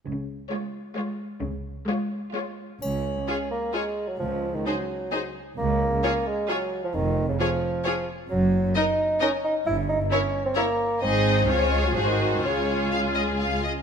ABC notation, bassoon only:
X:1
M:3/4
L:1/16
Q:1/4=131
K:Db
V:1 name="Bassoon" clef=bass
z12 | z12 | D6 B,2 A,3 G, | F,3 E, G,6 z2 |
B,6 A,2 G,3 F, | E,3 D, F,6 z2 | G,4 E4 D2 E2 | =E2 _E2 D3 C B,4 |
C6 A, G, F, E,3 | D,8- D,2 z2 |]